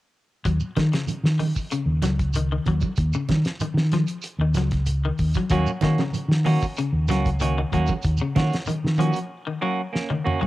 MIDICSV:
0, 0, Header, 1, 7, 480
1, 0, Start_track
1, 0, Key_signature, -6, "minor"
1, 0, Tempo, 631579
1, 344, Time_signature, 4, 2, 24, 8
1, 7956, End_track
2, 0, Start_track
2, 0, Title_t, "Clean electric guitar"
2, 0, Program_c, 0, 27
2, 4185, Note_on_c, 0, 58, 70
2, 4188, Note_on_c, 0, 61, 82
2, 4190, Note_on_c, 0, 66, 82
2, 4332, Note_off_c, 0, 58, 0
2, 4334, Note_off_c, 0, 61, 0
2, 4335, Note_off_c, 0, 66, 0
2, 4424, Note_on_c, 0, 58, 64
2, 4427, Note_on_c, 0, 61, 57
2, 4431, Note_on_c, 0, 66, 66
2, 4572, Note_off_c, 0, 58, 0
2, 4573, Note_off_c, 0, 61, 0
2, 4575, Note_off_c, 0, 66, 0
2, 4899, Note_on_c, 0, 58, 58
2, 4905, Note_on_c, 0, 61, 64
2, 4909, Note_on_c, 0, 66, 62
2, 5050, Note_off_c, 0, 58, 0
2, 5053, Note_off_c, 0, 61, 0
2, 5055, Note_off_c, 0, 66, 0
2, 5386, Note_on_c, 0, 58, 65
2, 5397, Note_on_c, 0, 61, 61
2, 5398, Note_on_c, 0, 66, 64
2, 5533, Note_off_c, 0, 58, 0
2, 5539, Note_off_c, 0, 61, 0
2, 5539, Note_off_c, 0, 66, 0
2, 5628, Note_on_c, 0, 58, 56
2, 5635, Note_on_c, 0, 66, 54
2, 5636, Note_on_c, 0, 61, 59
2, 5775, Note_off_c, 0, 58, 0
2, 5778, Note_off_c, 0, 61, 0
2, 5778, Note_off_c, 0, 66, 0
2, 5875, Note_on_c, 0, 58, 60
2, 5884, Note_on_c, 0, 61, 64
2, 5886, Note_on_c, 0, 66, 61
2, 6018, Note_off_c, 0, 58, 0
2, 6023, Note_off_c, 0, 61, 0
2, 6024, Note_off_c, 0, 66, 0
2, 6347, Note_on_c, 0, 58, 52
2, 6356, Note_on_c, 0, 61, 60
2, 6361, Note_on_c, 0, 66, 62
2, 6494, Note_off_c, 0, 58, 0
2, 6499, Note_off_c, 0, 61, 0
2, 6501, Note_off_c, 0, 66, 0
2, 6824, Note_on_c, 0, 58, 59
2, 6829, Note_on_c, 0, 61, 60
2, 6834, Note_on_c, 0, 66, 70
2, 6973, Note_off_c, 0, 58, 0
2, 6975, Note_off_c, 0, 61, 0
2, 6978, Note_off_c, 0, 66, 0
2, 7307, Note_on_c, 0, 58, 64
2, 7310, Note_on_c, 0, 61, 64
2, 7313, Note_on_c, 0, 66, 68
2, 7454, Note_off_c, 0, 58, 0
2, 7455, Note_off_c, 0, 61, 0
2, 7457, Note_off_c, 0, 66, 0
2, 7547, Note_on_c, 0, 58, 59
2, 7552, Note_on_c, 0, 61, 51
2, 7694, Note_off_c, 0, 58, 0
2, 7697, Note_off_c, 0, 61, 0
2, 7788, Note_on_c, 0, 58, 61
2, 7795, Note_on_c, 0, 66, 75
2, 7796, Note_on_c, 0, 61, 61
2, 7934, Note_off_c, 0, 58, 0
2, 7938, Note_off_c, 0, 61, 0
2, 7938, Note_off_c, 0, 66, 0
2, 7956, End_track
3, 0, Start_track
3, 0, Title_t, "Clean electric guitar"
3, 0, Program_c, 1, 27
3, 345, Note_on_c, 1, 54, 74
3, 529, Note_off_c, 1, 54, 0
3, 583, Note_on_c, 1, 51, 63
3, 678, Note_off_c, 1, 51, 0
3, 710, Note_on_c, 1, 49, 62
3, 893, Note_off_c, 1, 49, 0
3, 1060, Note_on_c, 1, 51, 66
3, 1245, Note_off_c, 1, 51, 0
3, 1308, Note_on_c, 1, 49, 76
3, 1490, Note_off_c, 1, 49, 0
3, 1547, Note_on_c, 1, 54, 61
3, 1729, Note_off_c, 1, 54, 0
3, 1795, Note_on_c, 1, 51, 62
3, 1885, Note_off_c, 1, 51, 0
3, 1917, Note_on_c, 1, 51, 62
3, 2003, Note_off_c, 1, 51, 0
3, 2035, Note_on_c, 1, 54, 71
3, 2215, Note_off_c, 1, 54, 0
3, 2393, Note_on_c, 1, 49, 60
3, 2575, Note_off_c, 1, 49, 0
3, 2749, Note_on_c, 1, 51, 55
3, 2931, Note_off_c, 1, 51, 0
3, 2989, Note_on_c, 1, 53, 73
3, 3171, Note_off_c, 1, 53, 0
3, 3354, Note_on_c, 1, 51, 58
3, 3441, Note_off_c, 1, 51, 0
3, 3474, Note_on_c, 1, 54, 63
3, 3654, Note_off_c, 1, 54, 0
3, 3837, Note_on_c, 1, 51, 65
3, 4018, Note_off_c, 1, 51, 0
3, 4080, Note_on_c, 1, 54, 61
3, 4165, Note_off_c, 1, 54, 0
3, 4194, Note_on_c, 1, 54, 75
3, 4375, Note_off_c, 1, 54, 0
3, 4434, Note_on_c, 1, 51, 63
3, 4526, Note_off_c, 1, 51, 0
3, 4562, Note_on_c, 1, 49, 59
3, 4741, Note_off_c, 1, 49, 0
3, 4914, Note_on_c, 1, 51, 75
3, 5095, Note_off_c, 1, 51, 0
3, 5155, Note_on_c, 1, 49, 80
3, 5336, Note_off_c, 1, 49, 0
3, 5396, Note_on_c, 1, 54, 73
3, 5577, Note_off_c, 1, 54, 0
3, 5635, Note_on_c, 1, 51, 71
3, 5727, Note_off_c, 1, 51, 0
3, 5764, Note_on_c, 1, 51, 69
3, 5848, Note_off_c, 1, 51, 0
3, 5876, Note_on_c, 1, 54, 70
3, 6056, Note_off_c, 1, 54, 0
3, 6243, Note_on_c, 1, 49, 71
3, 6422, Note_off_c, 1, 49, 0
3, 6591, Note_on_c, 1, 51, 64
3, 6773, Note_off_c, 1, 51, 0
3, 6833, Note_on_c, 1, 53, 76
3, 7015, Note_off_c, 1, 53, 0
3, 7197, Note_on_c, 1, 51, 62
3, 7284, Note_off_c, 1, 51, 0
3, 7314, Note_on_c, 1, 54, 70
3, 7495, Note_off_c, 1, 54, 0
3, 7679, Note_on_c, 1, 51, 73
3, 7859, Note_off_c, 1, 51, 0
3, 7914, Note_on_c, 1, 54, 70
3, 7956, Note_off_c, 1, 54, 0
3, 7956, End_track
4, 0, Start_track
4, 0, Title_t, "Fingered electric bass"
4, 0, Program_c, 2, 33
4, 343, Note_on_c, 2, 39, 78
4, 450, Note_off_c, 2, 39, 0
4, 587, Note_on_c, 2, 51, 80
4, 692, Note_off_c, 2, 51, 0
4, 939, Note_on_c, 2, 51, 83
4, 1149, Note_off_c, 2, 51, 0
4, 1412, Note_on_c, 2, 39, 66
4, 1519, Note_off_c, 2, 39, 0
4, 1541, Note_on_c, 2, 37, 74
4, 1956, Note_off_c, 2, 37, 0
4, 2023, Note_on_c, 2, 39, 66
4, 2130, Note_off_c, 2, 39, 0
4, 2265, Note_on_c, 2, 39, 82
4, 2371, Note_off_c, 2, 39, 0
4, 2504, Note_on_c, 2, 51, 80
4, 2611, Note_off_c, 2, 51, 0
4, 2843, Note_on_c, 2, 51, 78
4, 3061, Note_off_c, 2, 51, 0
4, 3334, Note_on_c, 2, 39, 77
4, 3441, Note_off_c, 2, 39, 0
4, 3452, Note_on_c, 2, 37, 81
4, 3871, Note_off_c, 2, 37, 0
4, 3944, Note_on_c, 2, 39, 69
4, 4051, Note_off_c, 2, 39, 0
4, 4179, Note_on_c, 2, 39, 99
4, 4288, Note_off_c, 2, 39, 0
4, 4424, Note_on_c, 2, 51, 72
4, 4531, Note_off_c, 2, 51, 0
4, 4776, Note_on_c, 2, 51, 85
4, 4989, Note_off_c, 2, 51, 0
4, 5264, Note_on_c, 2, 39, 76
4, 5367, Note_off_c, 2, 39, 0
4, 5378, Note_on_c, 2, 37, 77
4, 5796, Note_off_c, 2, 37, 0
4, 5874, Note_on_c, 2, 39, 71
4, 5978, Note_off_c, 2, 39, 0
4, 6117, Note_on_c, 2, 39, 104
4, 6220, Note_off_c, 2, 39, 0
4, 6353, Note_on_c, 2, 51, 85
4, 6457, Note_off_c, 2, 51, 0
4, 6721, Note_on_c, 2, 51, 89
4, 6924, Note_off_c, 2, 51, 0
4, 7956, End_track
5, 0, Start_track
5, 0, Title_t, "Muted fingered electric bass strokes"
5, 810, Note_on_c, 9, 29, 30
5, 886, Note_off_c, 9, 29, 0
5, 2733, Note_on_c, 9, 29, 33
5, 2809, Note_off_c, 9, 29, 0
5, 4645, Note_on_c, 9, 29, 32
5, 4721, Note_off_c, 9, 29, 0
5, 6592, Note_on_c, 9, 29, 36
5, 6668, Note_off_c, 9, 29, 0
5, 7956, End_track
6, 0, Start_track
6, 0, Title_t, "Shekere"
6, 346, Note_on_c, 9, 82, 54
6, 422, Note_off_c, 9, 82, 0
6, 456, Note_on_c, 9, 82, 67
6, 532, Note_off_c, 9, 82, 0
6, 698, Note_on_c, 9, 82, 21
6, 774, Note_off_c, 9, 82, 0
6, 818, Note_on_c, 9, 82, 64
6, 894, Note_off_c, 9, 82, 0
6, 1061, Note_on_c, 9, 82, 25
6, 1137, Note_off_c, 9, 82, 0
6, 1183, Note_on_c, 9, 82, 54
6, 1259, Note_off_c, 9, 82, 0
6, 1303, Note_on_c, 9, 82, 68
6, 1379, Note_off_c, 9, 82, 0
6, 1541, Note_on_c, 9, 82, 68
6, 1617, Note_off_c, 9, 82, 0
6, 1671, Note_on_c, 9, 82, 26
6, 1747, Note_off_c, 9, 82, 0
6, 1774, Note_on_c, 9, 82, 74
6, 1850, Note_off_c, 9, 82, 0
6, 2019, Note_on_c, 9, 82, 23
6, 2095, Note_off_c, 9, 82, 0
6, 2134, Note_on_c, 9, 82, 54
6, 2210, Note_off_c, 9, 82, 0
6, 2252, Note_on_c, 9, 82, 53
6, 2328, Note_off_c, 9, 82, 0
6, 2380, Note_on_c, 9, 82, 76
6, 2456, Note_off_c, 9, 82, 0
6, 2619, Note_on_c, 9, 82, 23
6, 2695, Note_off_c, 9, 82, 0
6, 2735, Note_on_c, 9, 82, 73
6, 2811, Note_off_c, 9, 82, 0
6, 2975, Note_on_c, 9, 82, 26
6, 3051, Note_off_c, 9, 82, 0
6, 3095, Note_on_c, 9, 82, 56
6, 3171, Note_off_c, 9, 82, 0
6, 3207, Note_on_c, 9, 82, 66
6, 3283, Note_off_c, 9, 82, 0
6, 3450, Note_on_c, 9, 82, 75
6, 3526, Note_off_c, 9, 82, 0
6, 3584, Note_on_c, 9, 82, 24
6, 3660, Note_off_c, 9, 82, 0
6, 3693, Note_on_c, 9, 82, 68
6, 3769, Note_off_c, 9, 82, 0
6, 3936, Note_on_c, 9, 82, 25
6, 4012, Note_off_c, 9, 82, 0
6, 4056, Note_on_c, 9, 82, 63
6, 4132, Note_off_c, 9, 82, 0
6, 4180, Note_on_c, 9, 82, 59
6, 4256, Note_off_c, 9, 82, 0
6, 4305, Note_on_c, 9, 82, 71
6, 4381, Note_off_c, 9, 82, 0
6, 4543, Note_on_c, 9, 82, 23
6, 4619, Note_off_c, 9, 82, 0
6, 4663, Note_on_c, 9, 82, 76
6, 4739, Note_off_c, 9, 82, 0
6, 4914, Note_on_c, 9, 82, 27
6, 4990, Note_off_c, 9, 82, 0
6, 5029, Note_on_c, 9, 82, 52
6, 5105, Note_off_c, 9, 82, 0
6, 5143, Note_on_c, 9, 82, 62
6, 5219, Note_off_c, 9, 82, 0
6, 5380, Note_on_c, 9, 82, 76
6, 5456, Note_off_c, 9, 82, 0
6, 5513, Note_on_c, 9, 82, 26
6, 5589, Note_off_c, 9, 82, 0
6, 5622, Note_on_c, 9, 82, 69
6, 5698, Note_off_c, 9, 82, 0
6, 5873, Note_on_c, 9, 82, 23
6, 5949, Note_off_c, 9, 82, 0
6, 5980, Note_on_c, 9, 82, 56
6, 6056, Note_off_c, 9, 82, 0
6, 6098, Note_on_c, 9, 82, 56
6, 6174, Note_off_c, 9, 82, 0
6, 6212, Note_on_c, 9, 82, 76
6, 6288, Note_off_c, 9, 82, 0
6, 6459, Note_on_c, 9, 82, 23
6, 6535, Note_off_c, 9, 82, 0
6, 6580, Note_on_c, 9, 82, 72
6, 6656, Note_off_c, 9, 82, 0
6, 6818, Note_on_c, 9, 82, 27
6, 6894, Note_off_c, 9, 82, 0
6, 6937, Note_on_c, 9, 82, 57
6, 7013, Note_off_c, 9, 82, 0
6, 7956, End_track
7, 0, Start_track
7, 0, Title_t, "Drums"
7, 342, Note_on_c, 9, 42, 58
7, 344, Note_on_c, 9, 36, 77
7, 418, Note_off_c, 9, 42, 0
7, 420, Note_off_c, 9, 36, 0
7, 582, Note_on_c, 9, 63, 81
7, 586, Note_on_c, 9, 36, 46
7, 586, Note_on_c, 9, 42, 43
7, 594, Note_on_c, 9, 38, 58
7, 658, Note_off_c, 9, 63, 0
7, 662, Note_off_c, 9, 36, 0
7, 662, Note_off_c, 9, 42, 0
7, 670, Note_off_c, 9, 38, 0
7, 707, Note_on_c, 9, 42, 47
7, 715, Note_on_c, 9, 38, 65
7, 783, Note_off_c, 9, 42, 0
7, 791, Note_off_c, 9, 38, 0
7, 816, Note_on_c, 9, 63, 60
7, 824, Note_on_c, 9, 42, 56
7, 892, Note_off_c, 9, 63, 0
7, 900, Note_off_c, 9, 42, 0
7, 954, Note_on_c, 9, 38, 60
7, 1030, Note_off_c, 9, 38, 0
7, 1061, Note_on_c, 9, 46, 56
7, 1064, Note_on_c, 9, 63, 64
7, 1137, Note_off_c, 9, 46, 0
7, 1140, Note_off_c, 9, 63, 0
7, 1188, Note_on_c, 9, 36, 53
7, 1264, Note_off_c, 9, 36, 0
7, 1302, Note_on_c, 9, 42, 66
7, 1378, Note_off_c, 9, 42, 0
7, 1538, Note_on_c, 9, 63, 74
7, 1542, Note_on_c, 9, 42, 49
7, 1550, Note_on_c, 9, 38, 24
7, 1614, Note_off_c, 9, 63, 0
7, 1618, Note_off_c, 9, 42, 0
7, 1626, Note_off_c, 9, 38, 0
7, 1668, Note_on_c, 9, 42, 39
7, 1669, Note_on_c, 9, 36, 56
7, 1744, Note_off_c, 9, 42, 0
7, 1745, Note_off_c, 9, 36, 0
7, 1790, Note_on_c, 9, 42, 69
7, 1866, Note_off_c, 9, 42, 0
7, 2020, Note_on_c, 9, 63, 59
7, 2025, Note_on_c, 9, 36, 51
7, 2025, Note_on_c, 9, 42, 45
7, 2096, Note_off_c, 9, 63, 0
7, 2101, Note_off_c, 9, 36, 0
7, 2101, Note_off_c, 9, 42, 0
7, 2138, Note_on_c, 9, 63, 72
7, 2148, Note_on_c, 9, 36, 54
7, 2214, Note_off_c, 9, 63, 0
7, 2224, Note_off_c, 9, 36, 0
7, 2262, Note_on_c, 9, 42, 59
7, 2264, Note_on_c, 9, 36, 81
7, 2338, Note_off_c, 9, 42, 0
7, 2340, Note_off_c, 9, 36, 0
7, 2498, Note_on_c, 9, 63, 85
7, 2503, Note_on_c, 9, 42, 43
7, 2504, Note_on_c, 9, 36, 53
7, 2510, Note_on_c, 9, 38, 55
7, 2574, Note_off_c, 9, 63, 0
7, 2579, Note_off_c, 9, 42, 0
7, 2580, Note_off_c, 9, 36, 0
7, 2586, Note_off_c, 9, 38, 0
7, 2622, Note_on_c, 9, 42, 46
7, 2630, Note_on_c, 9, 38, 61
7, 2698, Note_off_c, 9, 42, 0
7, 2706, Note_off_c, 9, 38, 0
7, 2741, Note_on_c, 9, 42, 57
7, 2742, Note_on_c, 9, 63, 53
7, 2817, Note_off_c, 9, 42, 0
7, 2818, Note_off_c, 9, 63, 0
7, 2869, Note_on_c, 9, 38, 62
7, 2945, Note_off_c, 9, 38, 0
7, 2977, Note_on_c, 9, 42, 45
7, 2984, Note_on_c, 9, 38, 28
7, 2984, Note_on_c, 9, 63, 68
7, 3053, Note_off_c, 9, 42, 0
7, 3060, Note_off_c, 9, 38, 0
7, 3060, Note_off_c, 9, 63, 0
7, 3103, Note_on_c, 9, 42, 46
7, 3179, Note_off_c, 9, 42, 0
7, 3222, Note_on_c, 9, 42, 59
7, 3298, Note_off_c, 9, 42, 0
7, 3456, Note_on_c, 9, 63, 81
7, 3460, Note_on_c, 9, 42, 46
7, 3467, Note_on_c, 9, 38, 25
7, 3532, Note_off_c, 9, 63, 0
7, 3536, Note_off_c, 9, 42, 0
7, 3543, Note_off_c, 9, 38, 0
7, 3579, Note_on_c, 9, 42, 38
7, 3586, Note_on_c, 9, 36, 52
7, 3587, Note_on_c, 9, 38, 19
7, 3655, Note_off_c, 9, 42, 0
7, 3662, Note_off_c, 9, 36, 0
7, 3663, Note_off_c, 9, 38, 0
7, 3697, Note_on_c, 9, 42, 62
7, 3773, Note_off_c, 9, 42, 0
7, 3943, Note_on_c, 9, 46, 53
7, 3945, Note_on_c, 9, 36, 55
7, 4019, Note_off_c, 9, 46, 0
7, 4021, Note_off_c, 9, 36, 0
7, 4067, Note_on_c, 9, 63, 72
7, 4069, Note_on_c, 9, 36, 59
7, 4070, Note_on_c, 9, 42, 40
7, 4143, Note_off_c, 9, 63, 0
7, 4145, Note_off_c, 9, 36, 0
7, 4146, Note_off_c, 9, 42, 0
7, 4176, Note_on_c, 9, 42, 60
7, 4184, Note_on_c, 9, 36, 71
7, 4252, Note_off_c, 9, 42, 0
7, 4260, Note_off_c, 9, 36, 0
7, 4414, Note_on_c, 9, 63, 86
7, 4421, Note_on_c, 9, 42, 42
7, 4426, Note_on_c, 9, 36, 51
7, 4428, Note_on_c, 9, 38, 56
7, 4490, Note_off_c, 9, 63, 0
7, 4497, Note_off_c, 9, 42, 0
7, 4502, Note_off_c, 9, 36, 0
7, 4504, Note_off_c, 9, 38, 0
7, 4545, Note_on_c, 9, 42, 47
7, 4545, Note_on_c, 9, 63, 62
7, 4553, Note_on_c, 9, 38, 72
7, 4621, Note_off_c, 9, 42, 0
7, 4621, Note_off_c, 9, 63, 0
7, 4629, Note_off_c, 9, 38, 0
7, 4659, Note_on_c, 9, 63, 58
7, 4667, Note_on_c, 9, 42, 55
7, 4735, Note_off_c, 9, 63, 0
7, 4743, Note_off_c, 9, 42, 0
7, 4799, Note_on_c, 9, 38, 61
7, 4875, Note_off_c, 9, 38, 0
7, 4906, Note_on_c, 9, 63, 70
7, 4908, Note_on_c, 9, 46, 54
7, 4982, Note_off_c, 9, 63, 0
7, 4984, Note_off_c, 9, 46, 0
7, 5036, Note_on_c, 9, 36, 56
7, 5112, Note_off_c, 9, 36, 0
7, 5158, Note_on_c, 9, 42, 69
7, 5234, Note_off_c, 9, 42, 0
7, 5388, Note_on_c, 9, 63, 80
7, 5406, Note_on_c, 9, 42, 49
7, 5414, Note_on_c, 9, 38, 24
7, 5464, Note_off_c, 9, 63, 0
7, 5482, Note_off_c, 9, 42, 0
7, 5490, Note_off_c, 9, 38, 0
7, 5518, Note_on_c, 9, 36, 64
7, 5521, Note_on_c, 9, 42, 44
7, 5594, Note_off_c, 9, 36, 0
7, 5597, Note_off_c, 9, 42, 0
7, 5639, Note_on_c, 9, 42, 70
7, 5715, Note_off_c, 9, 42, 0
7, 5868, Note_on_c, 9, 63, 64
7, 5875, Note_on_c, 9, 36, 54
7, 5878, Note_on_c, 9, 42, 46
7, 5944, Note_off_c, 9, 63, 0
7, 5951, Note_off_c, 9, 36, 0
7, 5954, Note_off_c, 9, 42, 0
7, 5998, Note_on_c, 9, 63, 75
7, 5999, Note_on_c, 9, 36, 58
7, 6074, Note_off_c, 9, 63, 0
7, 6075, Note_off_c, 9, 36, 0
7, 6116, Note_on_c, 9, 36, 75
7, 6118, Note_on_c, 9, 42, 55
7, 6192, Note_off_c, 9, 36, 0
7, 6194, Note_off_c, 9, 42, 0
7, 6353, Note_on_c, 9, 63, 90
7, 6356, Note_on_c, 9, 36, 53
7, 6360, Note_on_c, 9, 42, 40
7, 6368, Note_on_c, 9, 38, 57
7, 6429, Note_off_c, 9, 63, 0
7, 6432, Note_off_c, 9, 36, 0
7, 6436, Note_off_c, 9, 42, 0
7, 6444, Note_off_c, 9, 38, 0
7, 6485, Note_on_c, 9, 42, 50
7, 6493, Note_on_c, 9, 38, 70
7, 6561, Note_off_c, 9, 42, 0
7, 6569, Note_off_c, 9, 38, 0
7, 6598, Note_on_c, 9, 63, 61
7, 6605, Note_on_c, 9, 42, 58
7, 6674, Note_off_c, 9, 63, 0
7, 6681, Note_off_c, 9, 42, 0
7, 6737, Note_on_c, 9, 38, 60
7, 6813, Note_off_c, 9, 38, 0
7, 6825, Note_on_c, 9, 63, 72
7, 6842, Note_on_c, 9, 42, 50
7, 6901, Note_off_c, 9, 63, 0
7, 6918, Note_off_c, 9, 42, 0
7, 6963, Note_on_c, 9, 42, 48
7, 7039, Note_off_c, 9, 42, 0
7, 7566, Note_on_c, 9, 38, 52
7, 7642, Note_off_c, 9, 38, 0
7, 7680, Note_on_c, 9, 48, 46
7, 7756, Note_off_c, 9, 48, 0
7, 7803, Note_on_c, 9, 45, 57
7, 7879, Note_off_c, 9, 45, 0
7, 7926, Note_on_c, 9, 43, 57
7, 7956, Note_off_c, 9, 43, 0
7, 7956, End_track
0, 0, End_of_file